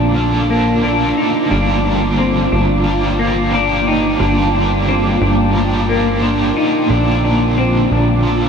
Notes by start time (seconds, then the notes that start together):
Already playing: A#1 A#2 D3 F3 A#3 D4 F4 A4 A5 D6
0.14 F3 A#3
0.18 D4 A4
0.50 A#3
0.82 F3 A#3 D4
0.87 D4 A4
1.17 D#4
1.49 G1 G2 D3 D4 G5
1.53 F3 A#3 D4
1.58 G4
1.85 D4
2.19 C4
2.52 G1 D4
2.84 F3 A#3
2.88 D4 G4
3.19 A#3
3.51 F3 A#3 D4
3.56 D4 G4
3.87 D#4
4.19 G1 G2 D3 D4
4.23 F3 A#3 D4
4.28 G4
4.55 D4
4.88 C4
5.22 G1 D4
5.53 F3 A#3
5.58 D4 G4
5.89 A#3
6.20 F3 A#3 D4
6.25 D4 G4
6.57 D#4
6.87 A#1 A#2 D3 D4 A5
6.91 F3 A#3 D4
6.96 A4
7.24 D4
7.58 C4
7.92 A#1 D4
8.23 F3 A#3
8.27 D4 A4